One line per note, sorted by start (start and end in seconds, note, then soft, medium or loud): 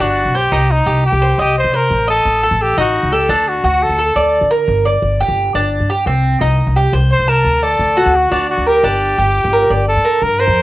0.00 0.24 G1 medium
0.00 0.34 D4 medium
0.00 0.38 F#4 medium
0.26 0.50 B1 medium
0.35 0.73 G4 medium
0.35 0.52 C5 medium
0.52 0.85 C2 medium
0.52 0.86 D#4 medium
0.71 1.05 D#4 medium
0.86 1.11 C2 medium
0.86 1.20 G4 medium
1.06 1.37 G4 medium
1.12 1.37 C2 medium
1.22 1.38 C5 medium
1.38 1.63 C2 medium
1.38 1.56 G4 medium
1.38 1.72 D#5 medium
1.58 1.77 C5 medium
1.64 1.89 C3 medium
1.73 2.09 A#4 medium
1.73 2.07 C5 medium
1.91 2.24 A1 medium
2.08 2.64 A4 medium
2.08 2.42 D#5 medium
2.25 2.50 A1 medium
2.43 2.77 A4 medium
2.51 2.76 A1 medium
2.62 2.78 G4 medium
2.77 3.02 A1 medium
2.77 3.11 D#4 medium
2.77 3.15 F#4 medium
3.03 3.28 C#2 medium
3.12 3.32 G4 medium
3.12 3.29 A4 medium
3.29 3.62 D2 medium
3.29 3.63 D4 medium
3.29 3.50 A4 medium
3.48 3.84 F#4 medium
3.64 3.89 D2 medium
3.64 3.98 F#4 medium
3.83 4.51 A4 medium
3.89 4.14 D2 medium
3.99 4.15 A4 medium
4.16 4.41 D2 medium
4.16 4.50 D5 medium
4.41 4.66 D3 medium
4.51 4.84 A#4 medium
4.68 5.01 G1 medium
4.85 5.19 D5 medium
5.02 5.27 G1 medium
5.20 5.54 G4 medium
5.28 5.53 G1 medium
5.54 5.79 G1 medium
5.54 5.88 D4 medium
5.80 6.05 G2 medium
5.90 6.06 G4 medium
6.06 6.39 C2 medium
6.06 6.40 C4 medium
6.41 6.66 C2 medium
6.41 6.75 D#4 medium
6.67 6.92 C2 medium
6.76 6.93 G4 medium
6.93 7.18 C2 medium
6.93 7.27 C5 medium
7.12 7.31 C5 medium
7.19 7.44 C2 medium
7.28 7.65 A#4 loud
7.28 7.61 A5 medium
7.45 7.78 D2 medium
7.63 8.17 A4 medium
7.63 7.96 D5 medium
7.79 8.04 D2 medium
7.97 8.31 F#4 medium
8.06 8.31 D2 medium
8.16 8.49 F#4 medium
8.32 8.56 D2 medium
8.32 8.65 D4 medium
8.49 8.69 F#4 medium
8.58 8.82 D2 medium
8.66 9.88 G4 medium
8.66 8.83 A#4 medium
8.83 9.16 G1 medium
8.83 9.17 D4 medium
9.18 9.43 G1 medium
9.18 9.52 G4 soft
9.44 9.69 G1 medium
9.53 9.70 A#4 medium
9.70 9.95 G1 medium
9.70 10.04 D5 medium
9.88 10.25 A4 medium
9.96 10.21 G2 medium
10.05 10.22 A#4 medium
10.22 10.47 G2 medium
10.22 10.41 A#4 medium
10.39 10.62 A#4 medium
10.39 10.62 C5 loud
10.48 10.62 F2 medium